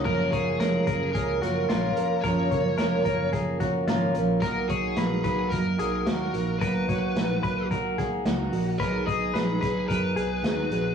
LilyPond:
<<
  \new Staff \with { instrumentName = "Clean electric guitar" } { \time 4/4 \key fis \major \tempo 4 = 110 ais'8 cis''8 ais'8 ais'8 gis'8 fis'8 eis'4 | ais'8 cis''8 ais'8 ais'8 gis'8 fis'8 eis'4 | ais'8 cis''8 b'8 b'8 ais'8 gis'8 fis'4 | ais'8 cis''8 b'8 b'8 ais'8 gis'8 fis'4 |
b'8 dis''8 b'8 b'8 ais'8 gis'8 fis'4 | }
  \new Staff \with { instrumentName = "Lead electric guitar" } { \time 4/4 \key fis \major ais'8 gis'4. ais'2 | cis''2 r2 | ais'8 gis'4. ais'2 | b'2 r2 |
ais'8 gis'4. b'2 | }
  \new Staff \with { instrumentName = "Twelve-string acoustic guitar" } { \time 4/4 \key fis \major <fis, cis eis ais cis' ais'>8 <eis ais cis' ais'>8 <fis, cis eis ais cis' ais'>8 <eis ais cis' ais'>8 <eis ais cis' ais'>8 <eis ais cis' ais'>8 <fis, cis eis ais cis' ais'>8 <eis ais cis' ais'>8 | <fis, cis eis ais cis' ais'>8 <eis ais cis' ais'>8 <fis, cis eis ais cis' ais'>8 <eis ais cis' ais'>8 <eis ais cis' ais'>8 <eis ais cis' ais'>8 <fis, cis eis ais cis' ais'>8 <eis ais cis' ais'>8 | <b, fis ais dis' fis'>8 <ais dis' fis'>8 <b, fis ais dis' fis'>8 <ais dis' fis'>8 <fis ais dis' fis'>8 <ais dis' fis'>8 <b, fis ais dis' fis'>8 <ais dis' fis'>8 | <b, fis ais dis' fis'>8 <ais dis' fis'>8 <b, fis ais dis' fis'>8 <ais dis' fis'>8 <fis ais dis' fis'>8 <ais dis' fis'>8 <b, fis ais dis' fis'>8 <ais dis' fis'>8 |
<b, fis b dis' gis'>8 <b dis' gis'>8 <b, fis b dis' gis'>8 <b dis' gis'>8 <fis b dis' gis'>8 <b dis' gis'>8 <b, fis b dis' gis'>8 <b dis' gis'>8 | }
  \new Staff \with { instrumentName = "Picked electric bass" } { \clef bass \time 4/4 \key fis \major fis,,8 fis,,8 eis,,8 fis,,8 cis,8 fis,,8 ais,,8 eis,,8 | fis,,8 fis,,8 eis,,8 fis,,4. gis,,8 ais,,8 | r8 b,,8 ais,,8 b,,8 fis,8 b,,8 dis,8 ais,,8 | b,,8 b,,8 ais,,8 b,,4. cis,8 ais,,8 |
b,,8 b,,8 ais,,8 b,,8 fis,8 b,,8 dis,8 ais,,8 | }
  \new DrumStaff \with { instrumentName = "Drums" } \drummode { \time 4/4 <cymc bd>8 <hh bd>8 <hh sn>8 <hh bd>8 <hh bd>8 <hh sn>8 <hh sn>8 hh8 | <hh bd>8 <hh bd>8 <hh sn>8 <hh bd>8 <hh bd>8 <hh bd sn>8 <hh sn>8 hh8 | <hh bd>8 <hh bd>8 <hh sn>8 <hh bd>8 <hh bd>8 hh8 <hh sn>8 hh8 | <hh bd>8 <hh bd>8 <hh sn>8 <hh bd>8 <hh bd>8 <hh bd sn>8 <hh sn>8 hho8 |
<hh bd>8 <hh bd>8 <hh sn>8 <hh bd>8 <hh bd>8 hh8 <hh sn>8 hh8 | }
>>